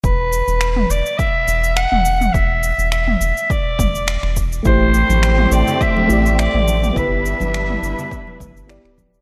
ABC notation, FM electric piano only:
X:1
M:4/4
L:1/8
Q:"Swing 16ths" 1/4=104
K:Em
V:1 name="FM electric piano"
z8 | z8 | [A,EGc]4- [A,EGc] [A,EGd]3 | [B,EGB]4- [B,EGB] z [B,EGd]2 |]